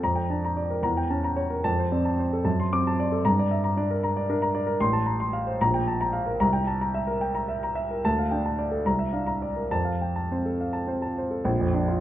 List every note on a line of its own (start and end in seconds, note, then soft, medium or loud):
0.03 0.81 F2 soft
0.03 0.24 A#5 medium
0.16 0.37 G5 soft
0.30 0.72 D4 soft
0.30 0.43 A5 soft
0.45 0.65 A#5 soft
0.57 0.78 D5 soft
0.70 0.83 A#4 soft
0.83 1.62 E2 soft
0.83 1.04 A#5 medium
0.97 1.18 G5 soft
1.10 1.54 C#4 soft
1.10 1.24 A5 soft
1.24 1.45 A#5 soft
1.36 1.58 C#5 soft
1.50 1.64 A#4 soft
1.64 2.42 F2 medium
1.64 1.86 A5 medium
1.79 2.00 C5 soft
1.92 2.34 C4 soft
1.92 2.05 D5 soft
2.05 2.26 A5 soft
2.19 2.40 C5 soft
2.33 2.45 A4 soft
2.44 3.23 F#2 medium
2.44 2.66 A5 soft
2.60 2.80 C6 soft
2.73 3.15 C4 soft
2.73 2.86 D6 medium
2.87 3.08 A5 medium
3.00 3.21 D5 medium
3.12 3.25 A4 soft
3.25 4.78 G2 medium
3.25 3.46 A#5 medium
3.39 3.60 D5 soft
3.51 3.64 E5 soft
3.64 3.85 A#5 medium
3.77 4.18 D4 medium
3.77 3.98 D5 medium
3.91 4.11 A#4 soft
4.03 4.24 A#5 medium
4.17 4.37 D5 medium
4.30 4.72 D4 soft
4.30 4.50 A#4 medium
4.42 4.63 A#5 medium
4.55 4.76 D5 medium
4.67 4.81 A#4 medium
4.80 5.58 A1 medium
4.80 5.02 C6 medium
4.93 5.15 A5 medium
5.06 5.20 A#5 soft
5.20 5.42 C6 medium
5.33 5.55 F5 medium
5.47 5.61 C5 medium
5.61 6.38 A#1 medium
5.61 5.82 A#5 medium
5.74 5.95 G5 medium
5.87 6.01 A5 soft
6.01 6.22 A#5 medium
6.13 6.35 F5 medium
6.26 6.40 A#4 soft
6.40 7.98 C2 medium
6.40 6.62 A#5 medium
6.53 6.75 G5 medium
6.67 6.81 A5 soft
6.81 7.03 A#5 medium
6.94 7.17 E5 soft
7.07 7.30 A#4 medium
7.21 7.43 G5 soft
7.35 7.57 A#5 soft
7.48 7.70 E5 soft
7.63 7.84 A#5 soft
7.75 7.97 E5 medium
7.91 8.03 A#4 soft
8.05 8.84 D2 medium
8.05 8.25 A5 medium
8.19 8.39 F5 soft
8.31 8.75 D4 soft
8.31 8.44 G5 soft
8.46 8.67 A5 soft
8.59 8.81 D5 soft
8.71 8.85 A4 soft
8.86 9.68 C2 soft
8.86 9.08 A#5 medium
8.99 9.22 E5 soft
9.13 9.59 D4 soft
9.13 9.27 F5 soft
9.27 9.50 A#5 soft
9.42 9.65 D5 soft
9.56 9.71 A#4 soft
9.71 11.43 F2 soft
9.71 9.94 A5 medium
9.85 10.09 F5 soft
10.01 10.16 G5 soft
10.16 10.39 A5 soft
10.32 10.77 C4 soft
10.32 10.54 C5 soft
10.46 10.68 A4 soft
10.61 10.83 F5 soft
10.73 10.97 A5 soft
10.87 11.35 C4 soft
10.87 11.12 C5 soft
11.02 11.26 A5 soft
11.18 11.41 C5 soft
11.31 11.46 A4 soft
11.45 12.00 A#1 medium
11.60 11.83 F2 soft
11.74 11.97 D4 soft
11.88 12.00 F4 soft